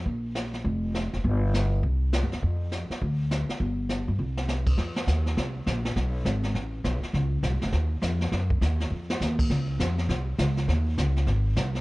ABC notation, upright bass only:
X:1
M:4/4
L:1/8
Q:"Swing" 1/4=203
K:Dblyd
V:1 name="Upright bass" clef=bass
B,,,4 F,,,3 F,,, | G,,,4 C,,2- (3C,, G,, =E,, | F,,3 z =D,,3 z | G,,,3 G,, C,,4 |
F,,2 E,,2 C,,2 B,,,2 | _C,,2 A,,,2 =A,,,2 C,, z | D,,2 (3C,, A,,, F,,, E,,2 F,,2 | _G,,2 E,,2 F,,2 E,,2 |
D,,2 F,,2 C,,2 D,,2 | E,,2 D,,2 A,,,2 C,,2 |]